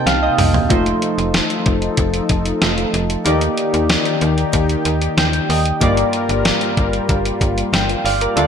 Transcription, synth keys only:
0.00 0.72 C3 medium
0.00 0.66 A#3 medium
0.00 0.67 D#4 medium
0.00 0.67 G4 medium
0.00 0.67 C5 medium
0.00 0.73 G5 medium
0.00 0.73 A5 medium
0.06 0.22 F5 medium
0.23 0.67 D#5 medium
0.69 2.58 A3 medium
0.69 2.58 D#4 medium
0.69 2.58 F4 medium
0.69 2.59 C5 medium
2.62 3.26 A3 medium
2.62 3.24 D#4 soft
2.62 3.26 F4 soft
2.62 3.26 A4 medium
3.25 4.18 D#3 medium
3.25 5.77 A#3 medium
3.25 5.77 D#4 medium
3.25 5.78 G4 medium
3.25 5.78 D5 medium
5.18 5.47 G5 medium
5.50 5.79 D#5 medium
5.81 6.73 G2 medium
5.81 8.32 A#3 medium
5.81 8.33 F4 medium
5.81 8.33 G4 medium
5.81 7.70 D5 medium
7.73 8.03 G5 medium
8.05 8.20 D5 medium
8.05 8.20 F5 medium
8.21 8.47 A#4 medium
8.21 8.37 D5 medium
8.36 8.47 D3 medium
8.36 8.47 A3 medium
8.36 8.47 D4 medium
8.36 8.47 F4 medium
8.36 8.47 D5 medium

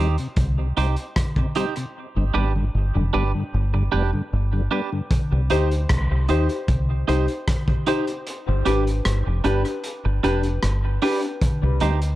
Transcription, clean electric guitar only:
0.00 0.15 D#4 medium
0.00 0.15 G4 medium
0.00 0.16 C5 medium
0.77 0.94 D#4 medium
0.77 0.95 G4 medium
0.77 0.95 C5 medium
1.56 1.73 D#4 medium
1.56 1.74 G4 medium
1.56 1.74 C5 loud
1.76 muted clean electric guitar stroke soft
2.34 2.52 D4 medium
2.34 2.52 G4 medium
2.34 2.52 B4 loud
3.13 3.31 D4 medium
3.13 3.31 G4 medium
3.13 3.31 B4 loud
3.74 muted clean electric guitar stroke soft
3.92 4.10 D4 medium
3.92 4.10 G4 medium
3.92 4.10 B4 medium
4.71 4.89 D4 medium
4.71 4.89 G4 medium
4.71 4.89 B4 loud
5.50 5.68 D#4 medium
5.50 5.68 G4 medium
5.50 5.68 C5 medium
6.29 6.47 D#4 medium
6.29 6.47 G4 medium
6.29 6.47 C5 loud
7.08 7.25 D#4 medium
7.08 7.26 G4 medium
7.08 7.26 C5 medium
7.87 8.04 D#4 medium
7.87 8.05 G4 medium
7.87 8.05 C5 medium
8.07 muted clean electric guitar stroke soft
8.65 8.83 D4 medium
8.65 8.83 G4 medium
8.65 8.84 B4 medium
9.44 9.62 D4 medium
9.44 9.62 G4 medium
9.44 9.62 B4 medium
10.05 muted clean electric guitar stroke soft
10.23 10.41 D4 medium
10.23 10.41 G4 medium
10.23 10.41 B4 loud
11.02 11.20 D4 loud
11.02 11.20 G4 medium
11.02 11.20 B4 loud
11.81 11.99 D#4 medium
11.81 11.99 G4 medium
11.81 11.99 C5 medium

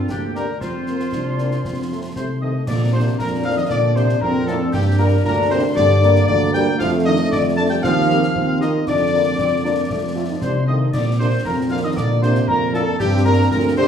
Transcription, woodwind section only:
0.10 0.21 D4 medium
0.35 0.47 G4 medium
0.61 2.12 F4 medium
2.16 2.28 C5 medium
2.43 2.54 D#5 medium
2.68 2.80 D5 medium
2.93 3.05 C5 medium
3.19 3.43 A#4 medium
3.45 3.58 F5 medium
3.58 3.71 D#5 medium
3.71 3.83 D5 loud
3.97 4.08 C5 medium
4.22 4.46 A#4 medium
4.47 4.74 A4 medium
4.73 4.97 G4 loud
4.99 5.23 A#4 loud
5.25 5.49 A#4 loud
5.50 5.62 C5 loud
5.76 6.24 D5 loud
6.27 6.52 D5 loud
6.53 6.65 G5 loud
6.79 6.91 F5 loud
7.05 7.30 D#5 loud
7.32 7.43 D5 loud
7.57 7.63 A5 loud
7.71 7.83 G5 loud
7.84 8.57 F5 loud
8.61 8.73 D#5 loud
8.88 10.38 D5 loud
10.42 10.53 C5 medium
10.67 10.91 D#5 medium
10.92 11.04 D5 medium
11.19 11.43 C5 medium
11.46 11.57 A#4 medium
11.71 11.83 F5 medium
11.84 11.97 D#5 medium
11.97 12.08 D5 medium
12.22 12.34 C5 loud
12.48 12.72 A#4 medium
12.74 12.98 A4 medium
13.00 13.24 G4 loud
13.26 13.37 A#4 medium
13.52 13.76 A#4 loud
13.77 13.88 C5 loud

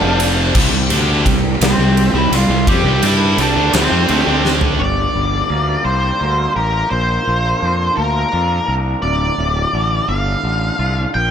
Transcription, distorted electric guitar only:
0.02 0.54 F2 loud
0.02 0.53 C3 medium
0.02 0.54 F3 loud
0.54 0.71 C3 medium
0.54 0.71 G3 loud
0.72 0.90 C3 medium
0.72 0.90 G3 medium
0.90 1.24 D3 loud
0.90 1.25 A3 medium
0.90 1.25 D4 loud
1.26 1.54 C3 medium
1.26 1.54 G3 medium
1.61 1.78 C3 medium
1.61 1.79 G3 medium
1.79 2.07 C3 medium
1.79 2.07 G3 medium
2.15 2.31 C3 medium
2.15 2.31 G3 medium
2.32 2.49 C3 medium
2.32 2.49 G3 medium
2.50 2.67 C3 medium
2.50 2.67 G3 medium
2.68 2.84 F3 medium
2.68 2.84 C4 medium
2.85 3.01 C3 medium
2.85 3.02 G3 medium
3.03 3.37 G3 medium
3.03 3.37 D4 loud
3.03 3.37 G4 loud
3.38 3.54 C3 loud
3.38 3.55 G3 loud
3.55 3.72 D3 medium
3.55 3.72 A3 medium
3.73 3.90 D3 medium
3.73 3.90 A3 loud
3.91 4.07 F3 medium
3.91 4.08 C4 loud
4.09 4.25 D3 loud
4.09 4.25 A3 loud
4.26 4.78 D3 medium
4.26 4.78 A3 loud
4.26 4.79 D4 loud

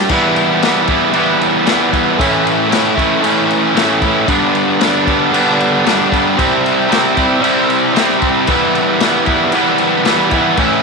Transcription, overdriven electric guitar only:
0.10 0.63 E3 loud
0.10 0.63 G3 loud
0.10 0.64 B3 loud
0.10 0.67 E4 loud
0.63 1.13 E3 medium
0.63 0.91 G3 medium
0.63 0.90 B3 medium
0.63 0.89 E4 medium
0.89 1.14 G3 medium
0.89 1.15 B3 medium
0.89 1.16 E4 medium
1.14 1.65 E3 medium
1.14 1.65 G3 medium
1.14 1.67 B3 medium
1.14 1.68 E4 medium
1.66 2.17 E3 loud
1.66 1.93 G3 medium
1.66 1.91 B3 loud
1.66 1.90 E4 loud
1.91 2.18 G3 medium
1.91 2.17 B3 medium
1.91 2.16 E4 medium
2.18 2.97 A2 loud
2.18 2.68 E3 loud
2.18 2.68 A3 loud
2.18 2.70 C#4 loud
2.18 2.71 E4 loud
2.69 3.19 E3 medium
2.69 2.98 A3 medium
2.69 2.97 C#4 medium
2.69 2.95 E4 medium
2.96 3.21 A3 medium
2.96 3.23 C#4 medium
2.96 3.23 E4 medium
3.20 3.74 E3 medium
3.20 3.75 A3 medium
3.20 3.75 C#4 medium
3.20 3.76 E4 medium
3.74 4.26 A2 medium
3.74 4.27 E3 medium
3.74 4.05 A3 loud
3.74 4.03 C#4 loud
3.74 4.01 E4 loud
4.02 4.29 A3 medium
4.02 4.28 C#4 medium
4.02 4.27 E4 medium
4.27 5.06 G2 medium
4.27 4.78 D3 loud
4.27 4.80 G3 loud
4.27 4.81 B3 loud
4.31 4.82 D4 loud
4.80 5.30 D3 medium
4.80 5.08 G3 medium
4.80 5.07 B3 medium
4.80 5.04 D4 medium
5.06 5.33 G3 medium
5.06 5.32 B3 medium
5.06 5.34 D4 medium
5.31 5.85 D3 medium
5.31 5.86 G3 medium
5.31 5.86 B3 medium
5.31 5.87 D4 medium
5.85 6.36 G2 loud
5.85 6.36 D3 loud
5.85 6.13 G3 loud
5.85 6.11 B3 loud
5.85 6.10 D4 loud
6.11 6.37 G3 medium
6.11 6.37 B3 medium
6.11 6.36 D4 medium
6.36 6.87 C3 medium
6.36 6.89 G3 loud
6.36 6.90 C4 loud
6.36 6.92 E4 loud
6.88 7.39 C3 medium
6.88 7.18 G3 medium
6.88 7.16 C4 medium
6.92 7.14 E4 medium
7.15 7.40 G3 medium
7.15 7.42 C4 medium
7.15 7.43 E4 medium
7.40 7.92 C3 medium
7.40 7.94 G3 medium
7.40 7.95 C4 medium
7.40 7.97 E4 medium
7.93 8.45 C3 loud
7.93 8.21 G3 loud
7.93 8.20 C4 loud
7.97 8.18 E4 loud
8.19 8.47 G3 medium
8.19 8.46 C4 medium
8.19 8.50 E4 medium
8.47 9.00 E3 loud
8.47 9.01 G3 loud
8.47 9.02 B3 loud
8.47 9.04 E4 loud
9.01 9.53 E3 medium
9.01 9.27 G3 medium
9.01 9.26 B3 medium
9.01 9.25 E4 medium
9.25 9.53 G3 medium
9.25 9.54 B3 medium
9.25 9.55 E4 medium
9.53 10.03 E3 medium
9.53 10.04 G3 medium
9.53 10.05 B3 medium
9.53 10.06 E4 medium
10.04 10.56 E3 loud
10.04 10.34 G3 loud
10.04 10.33 B3 loud
10.04 10.30 E4 loud
10.31 10.58 G3 medium
10.31 10.57 B3 medium
10.31 10.56 E4 medium
10.57 10.83 A2 loud
10.57 10.83 E3 loud
10.57 10.83 A3 loud
10.57 10.83 C#4 loud
10.57 10.83 E4 loud

